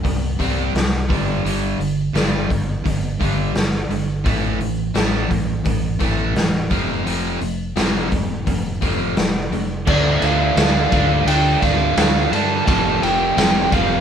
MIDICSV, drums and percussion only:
0, 0, Header, 1, 2, 480
1, 0, Start_track
1, 0, Tempo, 701754
1, 988, Time_signature, 4, 2, 24, 8
1, 9579, End_track
2, 0, Start_track
2, 0, Title_t, "Drums"
2, 32, Note_on_c, 9, 36, 70
2, 37, Note_on_c, 9, 46, 58
2, 101, Note_off_c, 9, 36, 0
2, 106, Note_off_c, 9, 46, 0
2, 273, Note_on_c, 9, 36, 70
2, 276, Note_on_c, 9, 46, 45
2, 341, Note_off_c, 9, 36, 0
2, 345, Note_off_c, 9, 46, 0
2, 516, Note_on_c, 9, 46, 56
2, 520, Note_on_c, 9, 38, 90
2, 585, Note_off_c, 9, 46, 0
2, 588, Note_off_c, 9, 38, 0
2, 754, Note_on_c, 9, 36, 82
2, 761, Note_on_c, 9, 46, 40
2, 822, Note_off_c, 9, 36, 0
2, 829, Note_off_c, 9, 46, 0
2, 1001, Note_on_c, 9, 46, 61
2, 1070, Note_off_c, 9, 46, 0
2, 1235, Note_on_c, 9, 46, 40
2, 1303, Note_off_c, 9, 46, 0
2, 1472, Note_on_c, 9, 46, 60
2, 1476, Note_on_c, 9, 38, 87
2, 1541, Note_off_c, 9, 46, 0
2, 1544, Note_off_c, 9, 38, 0
2, 1713, Note_on_c, 9, 36, 72
2, 1717, Note_on_c, 9, 46, 44
2, 1781, Note_off_c, 9, 36, 0
2, 1785, Note_off_c, 9, 46, 0
2, 1954, Note_on_c, 9, 36, 75
2, 1958, Note_on_c, 9, 46, 59
2, 2022, Note_off_c, 9, 36, 0
2, 2026, Note_off_c, 9, 46, 0
2, 2194, Note_on_c, 9, 36, 73
2, 2199, Note_on_c, 9, 46, 44
2, 2262, Note_off_c, 9, 36, 0
2, 2267, Note_off_c, 9, 46, 0
2, 2431, Note_on_c, 9, 46, 56
2, 2434, Note_on_c, 9, 38, 93
2, 2499, Note_off_c, 9, 46, 0
2, 2503, Note_off_c, 9, 38, 0
2, 2673, Note_on_c, 9, 46, 37
2, 2741, Note_off_c, 9, 46, 0
2, 2912, Note_on_c, 9, 46, 59
2, 2913, Note_on_c, 9, 36, 102
2, 2980, Note_off_c, 9, 46, 0
2, 2982, Note_off_c, 9, 36, 0
2, 3150, Note_on_c, 9, 46, 37
2, 3219, Note_off_c, 9, 46, 0
2, 3387, Note_on_c, 9, 46, 55
2, 3390, Note_on_c, 9, 38, 93
2, 3455, Note_off_c, 9, 46, 0
2, 3459, Note_off_c, 9, 38, 0
2, 3631, Note_on_c, 9, 36, 73
2, 3632, Note_on_c, 9, 46, 42
2, 3699, Note_off_c, 9, 36, 0
2, 3700, Note_off_c, 9, 46, 0
2, 3867, Note_on_c, 9, 46, 58
2, 3870, Note_on_c, 9, 36, 74
2, 3935, Note_off_c, 9, 46, 0
2, 3938, Note_off_c, 9, 36, 0
2, 4105, Note_on_c, 9, 46, 42
2, 4110, Note_on_c, 9, 36, 75
2, 4174, Note_off_c, 9, 46, 0
2, 4178, Note_off_c, 9, 36, 0
2, 4351, Note_on_c, 9, 46, 52
2, 4354, Note_on_c, 9, 38, 94
2, 4419, Note_off_c, 9, 46, 0
2, 4423, Note_off_c, 9, 38, 0
2, 4586, Note_on_c, 9, 46, 41
2, 4590, Note_on_c, 9, 36, 81
2, 4654, Note_off_c, 9, 46, 0
2, 4658, Note_off_c, 9, 36, 0
2, 4834, Note_on_c, 9, 46, 60
2, 4902, Note_off_c, 9, 46, 0
2, 5071, Note_on_c, 9, 46, 41
2, 5139, Note_off_c, 9, 46, 0
2, 5312, Note_on_c, 9, 46, 64
2, 5315, Note_on_c, 9, 38, 97
2, 5380, Note_off_c, 9, 46, 0
2, 5383, Note_off_c, 9, 38, 0
2, 5552, Note_on_c, 9, 46, 44
2, 5555, Note_on_c, 9, 36, 76
2, 5620, Note_off_c, 9, 46, 0
2, 5623, Note_off_c, 9, 36, 0
2, 5793, Note_on_c, 9, 46, 63
2, 5795, Note_on_c, 9, 36, 70
2, 5861, Note_off_c, 9, 46, 0
2, 5863, Note_off_c, 9, 36, 0
2, 6032, Note_on_c, 9, 46, 50
2, 6034, Note_on_c, 9, 36, 75
2, 6100, Note_off_c, 9, 46, 0
2, 6103, Note_off_c, 9, 36, 0
2, 6271, Note_on_c, 9, 46, 58
2, 6274, Note_on_c, 9, 38, 93
2, 6339, Note_off_c, 9, 46, 0
2, 6342, Note_off_c, 9, 38, 0
2, 6516, Note_on_c, 9, 46, 39
2, 6584, Note_off_c, 9, 46, 0
2, 6753, Note_on_c, 9, 49, 105
2, 6755, Note_on_c, 9, 36, 104
2, 6821, Note_off_c, 9, 49, 0
2, 6823, Note_off_c, 9, 36, 0
2, 6991, Note_on_c, 9, 51, 62
2, 7059, Note_off_c, 9, 51, 0
2, 7232, Note_on_c, 9, 51, 88
2, 7235, Note_on_c, 9, 38, 99
2, 7300, Note_off_c, 9, 51, 0
2, 7304, Note_off_c, 9, 38, 0
2, 7468, Note_on_c, 9, 51, 67
2, 7472, Note_on_c, 9, 36, 90
2, 7537, Note_off_c, 9, 51, 0
2, 7540, Note_off_c, 9, 36, 0
2, 7712, Note_on_c, 9, 51, 94
2, 7780, Note_off_c, 9, 51, 0
2, 7951, Note_on_c, 9, 36, 83
2, 7951, Note_on_c, 9, 51, 64
2, 7954, Note_on_c, 9, 38, 32
2, 8019, Note_off_c, 9, 36, 0
2, 8019, Note_off_c, 9, 51, 0
2, 8023, Note_off_c, 9, 38, 0
2, 8190, Note_on_c, 9, 51, 84
2, 8194, Note_on_c, 9, 38, 112
2, 8259, Note_off_c, 9, 51, 0
2, 8262, Note_off_c, 9, 38, 0
2, 8433, Note_on_c, 9, 51, 67
2, 8501, Note_off_c, 9, 51, 0
2, 8670, Note_on_c, 9, 36, 110
2, 8671, Note_on_c, 9, 51, 92
2, 8738, Note_off_c, 9, 36, 0
2, 8740, Note_off_c, 9, 51, 0
2, 8913, Note_on_c, 9, 51, 63
2, 8982, Note_off_c, 9, 51, 0
2, 9152, Note_on_c, 9, 51, 91
2, 9155, Note_on_c, 9, 38, 108
2, 9220, Note_off_c, 9, 51, 0
2, 9224, Note_off_c, 9, 38, 0
2, 9386, Note_on_c, 9, 51, 75
2, 9387, Note_on_c, 9, 36, 84
2, 9454, Note_off_c, 9, 51, 0
2, 9455, Note_off_c, 9, 36, 0
2, 9579, End_track
0, 0, End_of_file